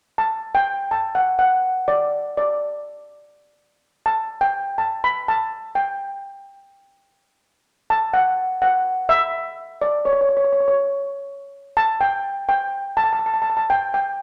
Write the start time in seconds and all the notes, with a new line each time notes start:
0.18 A5
0.55 G5
0.91 A5
1.15 F#5
1.39 F#5
1.88 D5
2.37 D5
4.06 A5
4.41 G5
4.78 A5
5.04 B5
5.28 A5
5.75 G5
7.90 A5
8.13 F#5
8.62 F#5
9.09 E5
9.81 D5
10.05 C#5
10.13 C#5
10.21 C#5
10.29 C#5
10.37 C#5
10.45 C#5
10.53 C#5
10.61 C#5
10.68 C#5
11.77 A5
12.01 G5
12.49 G5
12.97 A5
13.04 A5
13.13 A5
13.19 A5
13.26 A5
13.34 A5
13.42 A5
13.50 A5
13.57 A5
13.70 G5
13.94 G5